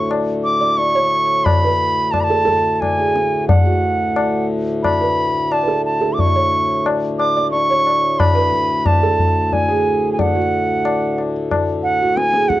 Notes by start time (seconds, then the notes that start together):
Already playing: D2 A2 C#5 C#6
0.11 tabla na
0.44 D6
0.61 D5
0.77 C#6, tabla tin
0.95 C#5
1.45 B5, tabla na, tabla ge
1.64 B4
2.11 A5, tabla na, tabla ge
2.21 A5 B5
2.30 A4
2.45 A4, tabla ge
2.76 A5
2.80 G#5, tabla na, tabla ge
2.98 G#4
3.16 tabla te
3.48 D2 A2 F#5, tabla tin, tabla ge
3.61 G#4
3.66 F#4
4.16 tabla na
4.83 B5, tabla na, tabla ge
5.01 B4
5.52 A5, tabla na
5.63 B4
5.68 A4
5.85 A5
6.01 A4
6.13 D6
6.19 C#6, tabla tin, tabla ge
6.27 D5
6.36 C#5
6.86 tabla na
7.19 D6, tabla na
7.36 D5
7.51 C#6, tabla tin
7.70 C#5
7.87 tabla na
8.19 B5, tabla na, tabla ge
8.35 B4
8.53 tabla ge
8.86 A5, tabla na, tabla ge
9.03 A4
9.19 tabla ge
9.53 G#5, tabla tin, tabla ge
9.69 G#4
10.13 G#5
10.19 F#5, tabla tin, tabla ge
10.35 F#4
10.85 tabla na
11.18 tabla na
11.51 tabla na, tabla ge
11.83 F#5
12.02 F#4
12.17 G#5, tabla te
12.33 G#4, tabla te
12.49 F#5, tabla ke